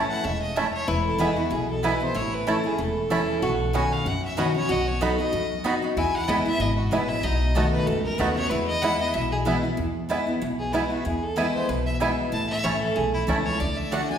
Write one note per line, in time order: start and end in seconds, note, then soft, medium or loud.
0.00 0.22 A2 medium
0.00 0.23 E3 loud
0.00 0.23 A3 medium
0.00 0.23 C#4 loud
0.00 0.84 C#4 medium
0.00 0.24 E4 loud
0.10 0.26 F#5 medium
0.24 0.63 E1 medium
0.24 0.55 G#2 medium
0.24 0.41 E5 loud
0.42 0.58 D#5 medium
0.56 0.87 F#2 medium
0.56 0.66 A3 medium
0.56 0.65 A3 medium
0.56 0.65 C#4 medium
0.56 0.66 E4 loud
0.56 0.65 E4 medium
0.56 0.66 C#5 loud
0.56 0.73 E5 medium
0.56 0.66 A5 loud
0.74 0.89 C#5 loud
0.88 1.27 E1 loud
0.88 1.49 E2 medium
0.88 2.14 E4 loud
0.88 1.05 B4 medium
1.06 1.21 A4 medium
1.18 1.36 E3 loud
1.18 1.36 G#3 loud
1.18 1.29 B3 medium
1.18 1.36 B3 loud
1.18 1.28 B3 medium
1.18 1.30 E4 medium
1.18 1.35 E4 loud
1.18 1.28 E4 medium
1.18 1.38 G#4 medium
1.18 1.30 B4 medium
1.18 1.30 G#5 medium
1.36 1.51 B3 medium
1.36 1.51 E4 medium
1.36 1.53 F#4 medium
1.50 1.90 B1 medium
1.50 2.12 B2 medium
1.50 1.69 G#4 medium
1.70 1.86 A4 medium
1.83 2.00 E3 medium
1.83 2.00 G#3 medium
1.83 1.93 B3 loud
1.83 2.00 B3 loud
1.83 1.92 B3 medium
1.83 1.93 E4 loud
1.83 1.99 E4 medium
1.83 1.92 E4 medium
1.83 1.93 B4 loud
1.83 2.04 B4 medium
1.83 1.94 G#5 loud
2.00 2.15 B3 medium
2.00 2.15 E4 medium
2.00 2.18 C5 loud
2.15 2.54 A1 loud
2.15 2.76 A2 medium
2.15 3.42 E4 loud
2.15 2.35 C#5 loud
2.34 2.50 B4 medium
2.47 2.64 E3 loud
2.47 2.57 A3 medium
2.47 2.64 A3 medium
2.47 2.55 A3 medium
2.47 2.64 C#4 loud
2.47 2.55 C#4 medium
2.47 2.57 E4 medium
2.47 2.62 E4 loud
2.47 2.55 E4 medium
2.47 2.67 A4 medium
2.47 2.57 C#5 loud
2.47 2.57 A5 medium
2.64 2.79 C#4 medium
2.64 2.78 E4 medium
2.64 2.81 G#4 medium
2.78 3.17 E1 medium
2.78 3.39 E2 medium
2.78 3.74 A4 medium
3.10 3.41 E3 medium
3.10 3.20 A3 medium
3.10 3.41 A3 medium
3.10 3.19 A3 medium
3.10 3.41 C#4 medium
3.10 3.19 C#4 medium
3.10 3.20 E4 loud
3.10 3.42 E4 loud
3.10 3.19 E4 medium
3.10 3.21 C#5 loud
3.10 3.21 A5 loud
3.42 3.81 B1 loud
3.42 3.72 B2 medium
3.42 4.51 F#4 loud
3.73 4.04 B2 medium
3.73 4.05 D#3 loud
3.73 3.82 B3 medium
3.73 4.05 C#4 loud
3.73 3.83 C#4 medium
3.73 3.84 D#4 medium
3.73 4.05 F#4 loud
3.73 3.83 F#4 medium
3.73 3.84 B4 medium
3.73 3.84 F#5 medium
3.73 3.94 G#5 loud
3.73 3.84 C#6 loud
3.92 4.09 F5 medium
4.06 4.44 F#2 medium
4.06 4.67 F#2 medium
4.06 4.24 F#5 loud
4.25 4.41 E5 medium
4.37 4.54 B2 medium
4.37 4.54 D#3 medium
4.37 4.46 B3 medium
4.37 4.55 C#4 loud
4.37 4.46 C#4 medium
4.37 4.47 D#4 loud
4.37 4.53 F#4 loud
4.37 4.46 F#4 medium
4.37 4.48 B4 medium
4.37 4.56 D#5 medium
4.37 4.48 F#5 medium
4.37 4.48 C#6 loud
4.54 4.69 C#4 soft
4.54 4.69 F#4 medium
4.54 4.73 C#5 loud
4.69 5.07 B1 medium
4.69 5.30 B2 medium
4.69 5.97 F#4 loud
4.69 4.89 D#5 loud
4.87 5.03 C#5 medium
5.01 5.18 F#3 loud
5.01 5.11 B3 medium
5.01 5.18 B3 loud
5.01 5.10 B3 medium
5.01 5.19 D#4 loud
5.01 5.10 D#4 medium
5.01 5.11 F#4 medium
5.01 5.17 F#4 loud
5.01 5.10 F#4 medium
5.01 5.20 A4 medium
5.01 5.11 D#5 loud
5.01 5.12 B5 loud
5.18 5.33 D#4 medium
5.18 5.33 F#4 medium
5.18 5.65 D#5 loud
5.33 5.94 F#2 medium
5.33 5.71 F#2 loud
5.64 5.81 F#3 medium
5.64 5.74 B3 medium
5.64 5.82 B3 loud
5.64 5.73 B3 medium
5.64 5.82 D#4 loud
5.64 5.73 D#4 medium
5.64 5.75 F#4 loud
5.64 5.81 F#4 loud
5.64 5.73 F#4 medium
5.64 5.75 D#5 loud
5.64 5.75 B5 loud
5.82 5.97 D#4 medium
5.82 5.96 F#4 medium
5.97 6.16 E2 loud
5.97 6.58 E2 medium
5.97 7.20 E4 loud
5.97 6.17 G#5 loud
6.15 6.30 F#5 loud
6.27 6.56 F#1 medium
6.27 6.45 E3 medium
6.27 6.45 G#3 loud
6.27 6.38 B3 medium
6.27 6.45 B3 medium
6.27 6.37 B3 medium
6.27 6.38 E4 loud
6.27 6.44 E4 loud
6.27 6.37 E4 medium
6.27 6.38 B4 medium
6.27 6.46 D#5 medium
6.27 6.38 G#5 loud
6.46 6.60 B3 medium
6.46 6.60 E4 medium
6.46 6.63 E5 loud
6.60 6.87 G#1 loud
6.60 7.21 B2 medium
6.60 6.77 D#5 medium
6.77 6.93 F#4 medium
6.91 7.19 A1 loud
6.91 7.22 E3 medium
6.91 7.22 G#3 medium
6.91 7.02 B3 medium
6.91 7.23 B3 medium
6.91 7.00 B3 medium
6.91 7.02 E4 medium
6.91 7.23 E4 loud
6.91 7.00 E4 medium
6.91 7.10 B4 medium
6.91 7.02 B4 loud
6.91 7.02 G#5 loud
7.09 7.25 E5 loud
7.23 7.62 B1 loud
7.23 7.84 B2 medium
7.23 8.51 D#4 medium
7.23 7.71 D#5 medium
7.55 7.86 D#3 medium
7.55 7.86 A3 loud
7.55 7.64 A3 medium
7.55 7.65 B3 loud
7.55 7.86 B3 loud
7.55 7.64 D#4 medium
7.55 7.65 F#4 medium
7.55 7.86 F#4 loud
7.55 7.64 F#4 medium
7.55 7.65 D#5 medium
7.55 7.66 A5 medium
7.72 7.88 B4 loud
7.86 8.15 C#2 loud
7.86 8.48 F#2 medium
7.86 8.04 A4 loud
8.04 8.20 A#4 loud
8.18 8.46 D#2 loud
8.18 8.35 D#3 medium
8.18 8.36 A3 medium
8.18 8.27 A3 medium
8.18 8.29 B3 medium
8.18 8.36 B3 loud
8.18 8.28 D#4 medium
8.18 8.29 F#4 loud
8.18 8.35 F#4 medium
8.18 8.28 F#4 medium
8.18 8.35 B4 medium
8.18 8.29 D#5 loud
8.18 8.29 A5 loud
8.36 8.51 B3 medium
8.36 8.50 F#4 medium
8.36 8.51 C#5 loud
8.49 9.12 E2 medium
8.49 8.89 E2 medium
8.49 9.60 E4 medium
8.49 8.66 B4 medium
8.67 8.83 D#5 loud
8.82 8.99 E3 medium
8.82 8.99 G#3 loud
8.82 8.93 B3 medium
8.82 8.99 B3 loud
8.82 8.91 B3 medium
8.82 8.93 E4 medium
8.82 8.98 E4 loud
8.82 8.91 E4 medium
8.82 8.93 B4 medium
8.82 9.00 F#5 loud
8.82 8.93 G#5 loud
8.99 9.14 B3 medium
8.99 9.13 E4 medium
8.99 9.16 D#5 loud
9.14 9.53 B1 loud
9.14 9.75 B2 medium
9.14 9.31 E5 loud
9.31 9.40 G#4 medium
9.45 9.62 E3 medium
9.45 9.63 G#3 medium
9.45 9.56 B3 medium
9.45 9.63 B3 loud
9.45 9.55 B3 medium
9.45 9.56 E4 medium
9.45 9.62 E4 loud
9.45 9.55 E4 medium
9.45 9.56 B4 loud
9.45 9.56 G#5 loud
9.63 9.78 B3 soft
9.63 9.77 E4 medium
9.77 10.38 E2 medium
9.77 10.17 E2 loud
10.09 10.26 E3 medium
10.09 10.26 G#3 medium
10.09 10.19 B3 medium
10.09 10.27 B3 medium
10.09 10.18 B3 medium
10.09 10.19 E4 medium
10.09 10.26 E4 loud
10.09 10.18 E4 medium
10.09 10.20 B4 loud
10.09 10.20 G#5 medium
10.27 10.42 B3 medium
10.27 10.41 E4 medium
10.42 10.80 B1 medium
10.42 11.02 B2 loud
10.59 10.74 G#4 medium
10.72 10.90 E3 medium
10.72 10.90 G#3 medium
10.72 10.83 B3 medium
10.72 10.82 B3 medium
10.72 10.90 B3 medium
10.72 10.90 E4 medium
10.72 10.83 E4 loud
10.72 10.82 E4 medium
10.72 10.89 E4 medium
10.72 10.83 B4 medium
10.72 10.84 G#5 loud
10.90 11.05 B3 soft
10.90 11.04 E4 medium
10.90 11.07 F#4 medium
11.05 11.66 E2 medium
11.05 11.44 E2 loud
11.05 11.24 G#4 medium
11.23 11.38 A4 medium
11.36 11.67 E3 loud
11.36 11.67 G#3 loud
11.36 11.47 B3 medium
11.36 11.68 B3 loud
11.36 11.45 B3 medium
11.36 11.47 E4 medium
11.36 11.68 E4 loud
11.36 11.45 E4 medium
11.36 11.54 B4 medium
11.36 11.47 B4 medium
11.36 11.47 G#5 loud
11.54 11.70 C5 loud
11.69 12.07 B1 loud
11.69 12.30 B2 loud
11.69 11.85 B4 medium
11.86 11.95 E5 medium
12.00 12.31 E3 medium
12.00 12.31 G#3 medium
12.00 12.10 B3 medium
12.00 12.09 B3 medium
12.00 12.31 B3 loud
12.00 12.10 E4 loud
12.00 12.32 E4 medium
12.00 12.09 E4 medium
12.00 12.11 B4 loud
12.00 12.11 G#5 loud
12.32 12.52 A1 medium
12.32 12.93 A2 medium
12.32 12.49 A5 loud
12.50 12.65 E5 loud
12.64 12.92 A1 medium
12.64 12.94 E3 medium
12.64 12.74 A3 medium
12.64 12.95 A3 loud
12.64 12.72 A3 medium
12.64 12.95 C#4 medium
12.64 12.73 C#4 medium
12.64 12.74 E4 medium
12.64 12.95 E4 loud
12.64 12.73 E4 medium
12.64 12.81 C#5 loud
12.64 12.74 C#5 medium
12.64 12.74 A5 medium
12.81 12.97 A4 medium
12.96 13.24 B1 loud
12.96 13.57 E2 medium
12.96 13.13 G#4 medium
13.14 13.22 E4 loud
13.27 13.55 C#2 medium
13.27 13.58 E3 medium
13.27 13.58 A3 medium
13.27 13.38 A3 medium
13.27 13.36 A3 medium
13.27 13.59 C#4 loud
13.27 13.37 C#4 medium
13.27 13.38 E4 medium
13.27 13.59 E4 medium
13.27 13.37 E4 medium
13.27 13.38 C#5 loud
13.27 13.38 A5 medium
13.45 13.61 C#5 loud
13.60 13.99 D2 medium
13.60 13.90 D3 medium
13.60 13.79 D5 medium
13.77 13.94 E5 loud
13.91 14.09 D3 medium
13.91 14.01 A3 medium
13.91 14.09 A3 loud
13.91 14.00 A3 medium
13.91 14.09 D4 medium
13.91 14.00 D4 medium
13.91 14.02 F#4 medium
13.91 14.08 F#4 loud
13.91 14.00 F#4 medium
13.91 14.02 D5 loud
13.91 14.09 F#5 loud
13.91 14.02 F#5 loud
14.09 14.18 D4 medium
14.09 14.18 F#4 medium
14.09 14.18 G#5 loud